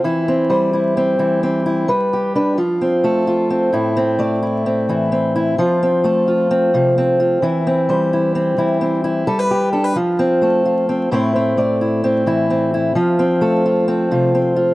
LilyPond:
\new Staff \with { instrumentName = "Steel-string acoustic guitar" } { \time 4/4 \key c \major \tempo 4 = 130 << { <c' e'>8 c'8 c''8 e'8 c'8 e'8 c'8 e'8 | b'8 g'8 b'8 f'8 c'8 a'8 f'8 c'8 | e'8 c'8 d''8 e'8 c'8 e'8 c'8 e'8 | f'8 c'8 a'8 f'8 c'8 f'8 c'8 f'8 |
e'8 c'8 c''8 e'8 c'8 e'8 c'8 e'8 | a'16 b'16 g'8 a'16 b'16 f'8 c'8 a'8 f'8 c'8 | <a c' e' c''>8 c'8 d''8 e'8 c'8 e'8 c'8 e'8 | f'8 c'8 a'8 f'8 c'8 f'8 c'8 f'8 | } \\ { e4 g4. e4. | g4 d'8 f4 a4. | a,4 a4. e4. | f4 a4. c4. |
e4 g4. e4. | g4 d'8 f4 a4. | a,4 a4. e4. | f4 a4. c4. | } >> }